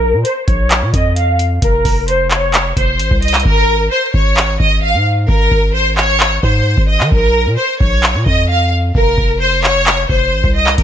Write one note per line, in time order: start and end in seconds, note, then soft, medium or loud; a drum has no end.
0.00 0.15 A#1 loud
0.00 0.22 A#4 loud
0.13 0.24 A#2 loud
0.25 0.46 C5 medium
0.25 closed hi-hat medium
0.48 0.84 A#1 loud
0.48 0.91 C#5 medium
0.48 kick medium
0.48 closed hi-hat medium
0.71 clap loud
0.71 closed hi-hat medium
0.82 0.93 A#2 loud
0.94 1.60 F2 loud
0.94 1.15 D#5 medium
0.94 kick medium
0.94 closed hi-hat medium
1.16 1.38 F5 medium
1.16 closed hi-hat medium
1.39 closed hi-hat medium
1.62 1.84 F1 loud
1.62 2.05 A#4 loud
1.62 kick loud
1.62 closed hi-hat medium
1.85 2.73 F1 loud
1.85 kick medium
1.85 open hi-hat medium
2.08 2.30 C5 medium
2.08 closed hi-hat medium
2.31 2.74 C#5 loud
2.31 clap loud
2.31 closed hi-hat medium
2.54 clap loud
2.54 closed hi-hat medium
2.77 3.01 F1 loud
2.77 3.20 C5 medium
2.77 kick medium
2.77 closed hi-hat medium
2.99 3.10 G#1 loud
2.99 closed hi-hat medium
3.11 3.44 C2 loud
3.11 kick loud
3.22 3.44 D#5 medium
3.22 closed hi-hat medium
3.28 closed hi-hat medium
3.34 clap medium
3.34 closed hi-hat medium
3.40 closed hi-hat medium
3.45 3.89 G#1 loud
3.45 3.88 A#4 loud
3.45 kick loud
3.91 4.13 C5 medium
4.14 4.58 G#1 loud
4.14 4.57 C#5 medium
4.14 kick loud
4.37 clap loud
4.60 4.96 G#1 loud
4.60 4.82 D#5 medium
4.60 kick medium
4.82 5.04 F5 medium
4.94 5.27 G#2 loud
5.29 5.51 G#1 loud
5.29 5.72 A#4 loud
5.29 kick loud
5.51 6.39 G#1 loud
5.51 kick medium
5.75 5.96 C5 medium
5.97 6.40 C#5 medium
5.97 clap medium
6.20 clap loud
6.43 6.76 G#2 loud
6.43 6.86 C5 medium
6.43 kick medium
6.78 7.02 G#1 loud
6.78 kick loud
6.89 7.11 D#5 medium
7.00 7.11 D#3 loud
7.00 clap medium
7.12 7.48 A#1 loud
7.12 7.55 A#4 loud
7.12 kick loud
7.46 7.57 A#2 loud
7.58 7.79 C5 medium
7.80 8.16 A#1 loud
7.80 8.24 C#5 medium
7.80 kick medium
8.03 clap loud
8.15 8.26 A#2 loud
8.26 8.92 F2 loud
8.26 8.48 D#5 medium
8.26 kick medium
8.49 8.71 F5 medium
8.95 9.17 F1 loud
8.95 9.38 A#4 loud
8.95 kick loud
9.18 10.06 F1 loud
9.18 kick medium
9.41 9.62 C5 medium
9.64 10.07 C#5 medium
9.64 clap loud
9.87 clap loud
10.10 10.34 F1 loud
10.10 10.53 C5 medium
10.10 kick loud
10.32 10.43 G#1 loud
10.44 10.77 C2 loud
10.44 kick loud
10.55 10.77 D#5 medium
10.67 clap medium
10.78 10.83 G#1 loud
10.78 10.83 A#4 loud
10.78 kick loud
10.78 closed hi-hat medium